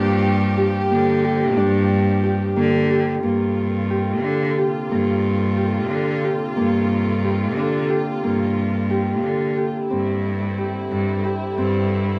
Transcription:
0.00 0.77 G2 loud
0.00 3.20 F3 medium
0.00 0.90 A#3 medium
0.00 3.20 A#3 medium
0.00 1.57 D4 medium
0.00 0.57 G4 medium
0.00 3.20 G4 medium
0.57 1.24 G4 medium
0.91 1.59 D3 medium
0.91 2.56 A#3 medium
1.24 2.23 G4 medium
1.57 2.43 G2 loud
1.57 4.24 D4 medium
2.23 2.90 G4 medium
2.56 3.14 D3 medium
2.56 3.23 A#3 medium
2.90 3.90 G4 medium
3.23 4.25 G2 medium
3.23 9.86 C3 medium
3.23 4.91 A#3 medium
3.23 9.86 A#3 medium
3.23 9.86 F4 medium
3.23 9.86 A4 medium
3.90 4.57 G4 medium
4.23 4.52 D3 medium
4.23 5.89 D4 medium
4.58 5.56 G4 medium
4.91 5.92 G2 loud
4.91 6.56 A#3 medium
5.57 6.24 G4 medium
5.90 6.19 D3 loud
5.90 7.56 D4 medium
6.24 7.23 G4 medium
6.56 7.58 G2 medium
6.56 8.23 A#3 medium
7.24 7.89 G4 medium
7.57 7.85 D3 medium
7.57 9.23 D4 medium
7.90 8.90 G4 medium
8.24 9.26 G2 medium
8.24 11.45 A#3 medium
8.90 9.57 G4 medium
9.23 9.53 D3 medium
9.23 10.91 D4 medium
9.57 10.58 G4 medium
9.90 10.76 G2 medium
9.90 12.19 D3 medium
9.90 12.19 C4 medium
9.90 11.58 C4 medium
9.90 12.19 E4 medium
10.58 11.24 G4 medium
10.90 11.19 G2 medium
10.90 12.19 D4 medium
11.25 12.19 G4 medium
11.57 12.19 G2 loud
11.57 12.19 C4 medium

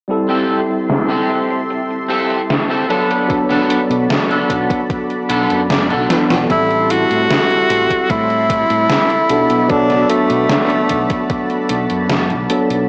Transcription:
0.08 2.84 G3 medium
0.08 2.85 C4 medium
0.08 2.85 E4 medium
0.08 2.87 G4 medium
0.08 2.86 A4 medium
0.08 2.87 E5 medium
0.08 6.46 A5 medium
0.08 2.87 C6 medium
0.08 closed hi-hat soft
0.29 0.59 C4 loud
0.29 0.60 G4 medium
0.29 0.60 A4 loud
0.50 closed hi-hat medium
0.70 closed hi-hat soft
0.89 muted clean electric guitar stroke soft
0.89 snare loud
0.89 closed hi-hat soft
1.09 1.59 C4 medium
1.09 1.60 G4 medium
1.09 1.60 A4 medium
1.09 closed hi-hat soft
1.30 closed hi-hat medium
1.50 closed hi-hat medium
1.70 closed hi-hat soft
1.90 closed hi-hat soft
2.08 2.39 C4 loud
2.08 2.40 G4 medium
2.08 2.40 A4 loud
2.08 closed hi-hat medium
2.30 closed hi-hat soft
2.50 snare loud
2.50 closed hi-hat soft
2.69 2.89 C4 medium
2.69 2.88 G4 medium
2.69 2.89 A4 medium
2.69 closed hi-hat soft
2.89 3.25 F#3 medium
2.89 3.37 B3 medium
2.89 3.25 B3 medium
2.89 3.38 D4 medium
2.89 3.25 D4 medium
2.89 6.46 F#4 medium
2.89 3.25 A4 medium
2.89 3.38 A4 medium
2.89 6.46 D5 medium
2.89 6.46 B5 medium
2.89 closed hi-hat medium
3.11 closed hi-hat soft
3.28 6.04 F#3 medium
3.28 6.05 B3 medium
3.28 6.05 D4 medium
3.28 6.06 A4 medium
3.28 kick loud
3.28 closed hi-hat medium
3.49 3.80 B3 loud
3.49 3.80 D4 medium
3.49 3.81 A4 loud
3.49 snare soft
3.49 closed hi-hat soft
3.70 closed hi-hat medium
3.90 4.06 B2 medium
3.90 closed hi-hat medium
4.09 muted clean electric guitar stroke soft
4.09 snare loud
4.09 closed hi-hat medium
4.29 4.80 B3 medium
4.29 4.80 D4 medium
4.29 4.80 A4 medium
4.29 closed hi-hat soft
4.50 4.66 B1 medium
4.50 kick medium
4.50 closed hi-hat medium
4.70 kick loud
4.70 closed hi-hat medium
4.90 kick loud
4.90 closed hi-hat soft
5.10 closed hi-hat soft
5.29 5.46 B1 loud
5.29 5.60 B3 loud
5.29 5.60 D4 loud
5.29 5.61 A4 loud
5.29 closed hi-hat medium
5.50 5.92 F#2 medium
5.50 closed hi-hat medium
5.70 5.89 D5 medium
5.70 snare loud
5.70 closed hi-hat medium
5.90 6.06 B1 medium
5.90 6.30 B3 medium
5.90 6.31 D4 medium
5.90 6.31 A4 medium
5.90 6.46 F#5 medium
5.90 closed hi-hat soft
6.09 6.45 F#3 medium
6.09 6.45 B3 medium
6.09 6.45 D4 medium
6.09 6.45 A4 medium
6.09 snare medium
6.09 closed hi-hat medium
6.30 6.46 B1 medium
6.30 snare medium
6.30 closed hi-hat medium
6.48 7.04 A1 medium
6.48 9.24 G3 medium
6.48 9.27 G3 medium
6.48 9.25 C4 medium
6.48 9.25 E4 medium
6.48 6.93 E4 loud
6.48 9.26 A4 loud
6.48 9.27 E5 medium
6.48 12.89 A5 medium
6.48 9.27 C6 medium
6.48 kick loud
6.48 closed hi-hat medium
6.71 closed hi-hat soft
6.90 8.12 F#4 loud
6.90 closed hi-hat medium
7.10 7.26 A2 medium
7.10 closed hi-hat medium
7.30 snare loud
7.30 closed hi-hat medium
7.50 closed hi-hat soft
7.70 7.86 A1 medium
7.70 closed hi-hat medium
7.90 kick medium
7.90 closed hi-hat medium
8.10 8.64 A2 medium
8.10 9.72 E4 loud
8.10 kick loud
8.10 closed hi-hat soft
8.30 closed hi-hat soft
8.50 kick loud
8.50 closed hi-hat medium
8.70 8.86 A2 medium
8.70 closed hi-hat medium
8.90 snare loud
8.90 closed hi-hat medium
9.10 closed hi-hat soft
9.29 9.46 B1 medium
9.29 9.65 F#3 medium
9.29 9.65 B3 medium
9.29 9.65 D4 medium
9.29 12.87 F#4 medium
9.29 9.66 A4 medium
9.29 12.86 D5 medium
9.29 12.86 B5 medium
9.29 closed hi-hat medium
9.50 10.04 B2 medium
9.50 closed hi-hat soft
9.69 12.45 F#3 medium
9.69 12.45 B3 medium
9.69 10.11 D4 loud
9.69 12.46 D4 medium
9.69 12.46 A4 loud
9.69 kick loud
9.69 closed hi-hat medium
9.90 snare soft
9.90 closed hi-hat soft
10.10 11.70 A3 medium
10.10 closed hi-hat medium
10.30 10.46 B2 medium
10.30 closed hi-hat medium
10.50 snare loud
10.50 closed hi-hat medium
10.70 closed hi-hat soft
10.90 11.06 B1 medium
10.90 kick medium
10.90 closed hi-hat medium
11.10 kick loud
11.10 closed hi-hat medium
11.30 kick loud
11.30 closed hi-hat medium
11.50 closed hi-hat soft
11.69 11.86 B1 loud
11.69 closed hi-hat medium
11.90 12.32 F#2 medium
11.90 closed hi-hat medium
12.10 snare loud
12.10 closed hi-hat medium
12.30 12.46 B1 medium
12.30 closed hi-hat soft
12.49 12.85 F#3 medium
12.49 12.85 B3 medium
12.49 12.85 D4 medium
12.49 12.85 A4 medium
12.49 closed hi-hat medium
12.70 12.86 B1 medium
12.70 closed hi-hat medium

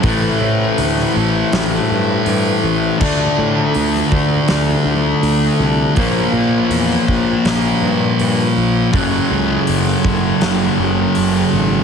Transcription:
0.00 0.29 A1 loud
0.00 2.98 A2 medium
0.00 5.92 A4 medium
0.00 5.93 A5 medium
0.00 kick loud
0.00 open hi-hat medium
0.05 2.99 E3 medium
0.05 3.00 A3 loud
0.05 2.99 E4 medium
0.05 2.99 C5 medium
0.41 0.66 A2 medium
0.78 1.04 D2 medium
0.78 open hi-hat medium
0.98 snare soft
1.16 1.41 A1 medium
1.53 1.78 A1 medium
1.53 snare loud
1.53 open hi-hat medium
1.91 2.16 G2 medium
2.26 2.52 G2 medium
2.26 open hi-hat medium
2.64 2.89 A1 medium
2.99 3.26 D2 loud
2.99 5.94 D3 medium
2.99 5.95 A3 medium
2.99 5.96 D4 loud
2.99 8.90 F4 medium
2.99 5.95 D5 medium
2.99 kick loud
2.99 crash loud
3.38 3.63 A2 medium
3.74 4.01 D2 medium
3.74 open hi-hat medium
3.95 snare soft
4.12 4.38 D2 loud
4.12 kick medium
4.48 4.74 D2 medium
4.48 snare loud
4.48 open hi-hat medium
4.85 5.11 D2 medium
5.23 5.48 D2 medium
5.23 open hi-hat medium
5.60 5.85 C2 loud
5.96 6.23 A#1 loud
5.96 8.91 A#2 medium
5.96 8.92 F3 loud
5.96 8.93 A#3 loud
5.96 8.92 A#4 medium
5.96 8.91 C#5 medium
5.96 8.91 A#5 medium
5.96 kick loud
5.96 open hi-hat medium
6.33 6.59 A#2 medium
6.70 6.96 E2 medium
6.70 open hi-hat medium
6.91 snare soft
7.08 7.34 A#1 medium
7.08 kick medium
7.45 7.70 A#1 loud
7.45 snare loud
7.45 open hi-hat medium
7.82 8.08 G2 medium
8.19 8.45 G2 medium
8.19 open hi-hat medium
8.57 8.82 A#1 loud
8.92 9.19 F#1 loud
8.92 11.84 F#2 medium
8.92 11.84 C#3 loud
8.92 11.84 F#4 medium
8.92 11.84 A4 medium
8.92 11.84 C#5 medium
8.92 11.84 A5 medium
8.92 kick loud
8.92 open hi-hat medium
8.96 11.84 F#3 loud
9.31 9.56 C#2 medium
9.67 9.94 F#1 medium
9.67 open hi-hat medium
9.86 snare soft
10.04 10.30 F#1 medium
10.04 kick medium
10.41 10.67 F#1 medium
10.41 snare loud
10.41 open hi-hat medium
10.79 11.04 F#1 medium
11.15 11.42 F#1 medium
11.15 open hi-hat medium
11.53 11.78 G#1 medium

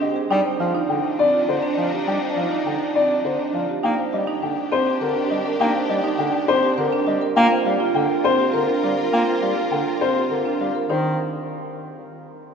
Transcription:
0.00 0.12 C4 medium
0.00 0.12 G4 medium
0.00 0.20 G4 medium
0.00 0.21 D#5 medium
0.16 0.35 G#4 medium
0.31 0.42 G3 loud
0.31 3.65 D4 medium
0.31 3.65 D#4 medium
0.31 0.50 D#4 medium
0.31 0.50 G5 medium
0.45 0.65 C5 medium
0.60 0.71 F3 medium
0.60 0.79 F4 medium
0.60 0.79 F5 medium
0.75 0.94 D#4 loud
0.89 1.01 D3 medium
0.89 1.09 D4 medium
0.89 1.09 G5 medium
1.04 1.23 D#4 medium
1.19 1.38 C4 medium
1.19 1.38 D5 loud
1.34 1.53 F4 medium
1.48 1.59 D3 medium
1.48 1.67 C5 medium
1.48 1.68 C5 medium
1.63 1.82 D4 loud
1.77 1.89 F3 medium
1.77 1.97 F4 medium
1.77 1.97 F5 medium
1.92 2.12 G4 medium
2.07 2.18 G3 medium
2.07 2.26 D#4 medium
2.07 2.27 G5 medium
2.22 2.41 C5 medium
2.37 2.48 F3 medium
2.37 2.56 F4 medium
2.37 2.56 F5 medium
2.51 2.70 D#4 medium
2.66 2.77 D3 medium
2.66 2.85 D4 medium
2.66 2.85 G5 medium
2.81 3.00 D#4 medium
2.95 3.14 C4 medium
2.95 3.15 D5 loud
3.10 3.29 F4 medium
3.25 3.36 D3 medium
3.25 3.44 C5 medium
3.39 3.59 D4 medium
3.54 3.65 F3 medium
3.54 3.73 F4 medium
3.54 3.73 F5 medium
3.69 3.88 G4 medium
3.84 3.95 A#3 loud
3.84 7.18 D4 medium
3.84 4.03 D#4 medium
3.84 7.18 G4 medium
3.84 4.03 G5 medium
3.98 4.17 C5 medium
4.13 4.24 G3 medium
4.13 4.32 G4 medium
4.13 4.32 D#5 medium
4.28 4.47 D#4 loud
4.42 4.54 D3 medium
4.42 4.62 D4 medium
4.42 4.62 G5 medium
4.57 4.76 D#4 medium
4.72 4.91 C4 loud
4.72 4.91 C5 loud
4.87 5.06 G4 medium
5.01 5.13 D3 medium
5.01 5.20 A#4 medium
5.01 5.20 C5 medium
5.16 5.35 D4 loud
5.30 5.42 G3 medium
5.30 5.50 G4 medium
5.30 5.50 D#5 medium
5.45 5.65 A#4 medium
5.60 5.71 A#3 loud
5.60 5.79 D#4 loud
5.60 5.79 G5 loud
5.75 5.94 C5 medium
5.89 6.01 G3 medium
5.89 6.09 G4 medium
5.89 6.09 D#5 medium
6.04 6.23 D#4 loud
6.19 6.30 D3 medium
6.19 6.38 D4 medium
6.19 6.38 G5 medium
6.34 6.53 D#4 medium
6.48 6.68 C4 loud
6.48 6.67 C5 loud
6.63 6.82 G4 medium
6.78 6.89 D3 medium
6.78 6.97 A#4 medium
6.78 6.97 C5 medium
6.92 7.12 D4 loud
7.07 7.18 G3 medium
7.07 7.26 G4 medium
7.07 7.26 D#5 medium
7.21 7.41 A#4 medium
7.36 7.48 A#3 loud
7.36 7.56 F4 loud
7.36 10.71 F4 medium
7.36 10.71 A#4 medium
7.36 7.56 G5 loud
7.51 7.70 C5 medium
7.66 7.77 G3 medium
7.66 7.85 G4 medium
7.66 7.85 F5 medium
7.80 8.00 F4 loud
7.95 8.07 D3 loud
7.95 8.14 D4 medium
7.95 8.14 G5 loud
8.10 8.29 F4 medium
8.24 8.44 C4 loud
8.24 8.44 C5 loud
8.39 8.58 G4 medium
8.53 8.65 D3 medium
8.53 8.73 A#4 medium
8.53 8.73 C5 medium
8.68 8.88 D4 medium
8.83 8.95 G3 medium
8.83 9.03 G4 medium
8.83 9.03 F5 medium
8.98 9.17 A#4 medium
9.13 9.24 A#3 medium
9.13 9.32 F4 loud
9.13 9.32 G5 medium
9.27 9.47 C5 medium
9.42 9.53 G3 medium
9.42 9.62 G4 medium
9.42 9.61 F5 medium
9.57 9.76 F4 medium
9.72 9.83 D3 medium
9.72 9.91 D4 medium
9.72 9.91 G5 medium
9.87 10.06 F4 medium
10.01 10.20 C4 medium
10.01 10.20 C5 loud
10.16 10.35 G4 medium
10.31 10.42 D3 medium
10.31 10.50 A#4 medium
10.31 10.50 C5 medium
10.45 10.65 D4 medium
10.60 10.71 G3 medium
10.60 10.79 G4 medium
10.60 10.79 F5 medium
10.75 10.94 A#4 medium
10.89 11.17 D#3 medium
10.89 11.17 D#4 medium
10.89 11.17 C5 medium

